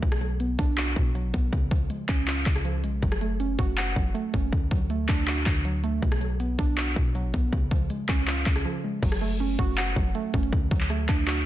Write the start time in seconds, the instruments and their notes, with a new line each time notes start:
0.02 808-style bass B1, synth pluck B2, kick, closed hi-hat
0.12 cross-stick
0.21 synth pluck F#3, closed hi-hat
0.40 synth pluck B3, closed hi-hat
0.59 808-style bass B1, synth pluck D4, kick, open hi-hat
0.78 synth pluck F#4, clap, closed hi-hat
0.96 808-style bass B1, synth pluck B2, kick, closed hi-hat
1.15 synth pluck F#3, closed hi-hat
1.24 808-style bass A1
1.34 808-style bass B1, synth pluck B3, kick, closed hi-hat
1.52 808-style bass C#2, synth pluck C#3, kick, closed hi-hat
1.71 808-style bass C#2, synth pluck F3, kick, closed hi-hat
1.90 synth pluck G#3, closed hi-hat
2.09 808-style bass C#2, synth pluck C#4, kick, clap, open hi-hat
2.28 synth pluck F4, clap, closed hi-hat
2.46 808-style bass C#2, synth pluck C#3, kick, clap, closed hi-hat
2.56 cross-stick
2.65 synth pluck F3, closed hi-hat
2.84 808-style bass B1, synth pluck G#3, closed hi-hat
3.02 808-style bass F#1, synth pluck F#3, kick, closed hi-hat
3.12 cross-stick
3.21 synth pluck A3, closed hi-hat
3.40 synth pluck C#4, closed hi-hat
3.59 808-style bass F#1, synth pluck F#4, kick, open hi-hat
3.77 synth pluck F#5, clap, closed hi-hat
3.96 808-style bass F#1, synth pluck F#3, kick, closed hi-hat
4.14 synth pluck A3, closed hi-hat
4.33 808-style bass F#1, synth pluck C#4, kick, closed hi-hat
4.52 808-style bass D2, synth pluck D3, kick, closed hi-hat
4.71 808-style bass D2, synth pluck F#3, kick, closed hi-hat
4.90 synth pluck A3, closed hi-hat
5.09 808-style bass D2, synth pluck D4, kick, clap, closed hi-hat
5.27 synth pluck F#4, clap, closed hi-hat
5.46 808-style bass D2, synth pluck D3, kick, clap, closed hi-hat
5.65 synth pluck F#3, closed hi-hat
5.84 synth pluck A3, closed hi-hat
6.02 808-style bass B1, synth pluck B2, kick, closed hi-hat
6.12 cross-stick
6.21 synth pluck F#3, closed hi-hat
6.40 synth pluck B3, closed hi-hat
6.59 808-style bass B1, synth pluck D4, kick, open hi-hat
6.77 synth pluck F#4, clap, closed hi-hat
6.96 808-style bass B1, synth pluck B2, kick, closed hi-hat
7.15 synth pluck F#3, closed hi-hat
7.24 808-style bass A1
7.34 808-style bass B1, synth pluck B3, kick, closed hi-hat
7.52 808-style bass C#2, synth pluck C#3, kick, closed hi-hat
7.71 808-style bass C#2, synth pluck F3, kick, closed hi-hat
7.90 synth pluck G#3, closed hi-hat
8.09 808-style bass C#2, synth pluck C#4, kick, clap, open hi-hat
8.27 synth pluck F4, clap, closed hi-hat
8.46 808-style bass C#2, synth pluck C#3, kick, clap, closed hi-hat
8.56 cross-stick
8.65 synth pluck F3
8.84 synth pluck G#3
9.03 808-style bass F#1, synth pluck F#3, kick, closed hi-hat, crash
9.12 cross-stick
9.21 synth pluck A3, closed hi-hat
9.40 synth pluck C#4, closed hi-hat
9.59 808-style bass F#1, synth pluck F#4, kick, closed hi-hat
9.78 synth pluck F#5, clap, closed hi-hat
9.96 808-style bass F#1, synth pluck F#3, kick, closed hi-hat
10.15 synth pluck A3, closed hi-hat
10.34 808-style bass F#1, synth pluck C#4, kick, closed hi-hat
10.43 closed hi-hat
10.52 808-style bass D2, synth pluck D3, kick, closed hi-hat
10.71 808-style bass D2, synth pluck F#3, kick, closed hi-hat
10.81 clap
10.90 synth pluck A3, cross-stick, closed hi-hat
11.09 808-style bass D2, synth pluck D4, kick, clap, closed hi-hat
11.27 synth pluck F#4, clap, closed hi-hat